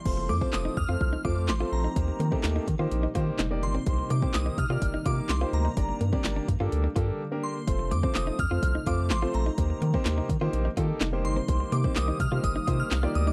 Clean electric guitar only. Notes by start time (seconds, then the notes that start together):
0.17 muted clean electric guitar stroke
0.29 A3
0.41 C4
0.65 D#4
0.77 muted clean electric guitar stroke
0.89 F4
1.01 muted clean electric guitar stroke
1.13 D#4
1.25 F4
1.60 F4
1.72 muted clean electric guitar stroke
1.84 D#4
2.08 muted clean electric guitar stroke
2.20 A#3
2.32 C4
2.56 D#4
2.68 muted clean electric guitar stroke
2.79 F4
2.91 muted clean electric guitar stroke
3.03 D#4
3.15 F4
3.39 D#4
3.63 muted clean electric guitar stroke
3.75 C4
3.99 muted clean electric guitar stroke
4.10 A#3
4.22 C4
4.46 D#4
4.58 muted clean electric guitar stroke
4.70 F4
4.82 muted clean electric guitar stroke
4.94 D#4
5.06 F4
5.41 F4
5.53 muted clean electric guitar stroke
5.65 D#4
5.89 muted clean electric guitar stroke
6.01 A#3
6.13 C4
6.36 D4
6.48 muted clean electric guitar stroke
6.60 F4
6.72 muted clean electric guitar stroke
6.84 D4
6.96 F4
7.79 muted clean electric guitar stroke
7.91 A3
8.03 C4
8.27 D#4
8.39 muted clean electric guitar stroke
8.51 F4
8.63 muted clean electric guitar stroke
8.75 D#4
8.87 F4
9.22 F4
9.34 muted clean electric guitar stroke
9.46 D#4
9.70 muted clean electric guitar stroke
9.82 A#3
9.94 C4
10.18 D#4
10.30 muted clean electric guitar stroke
10.41 F4
10.53 muted clean electric guitar stroke
10.65 D#4
10.77 F4
11.01 D#4
11.25 muted clean electric guitar stroke
11.36 C4
11.60 muted clean electric guitar stroke
11.72 A#3
11.84 C4
12.08 D#4
12.20 muted clean electric guitar stroke
12.32 F4
12.44 muted clean electric guitar stroke
12.56 D#4
12.67 F4
13.03 F4
13.15 muted clean electric guitar stroke
13.27 D#4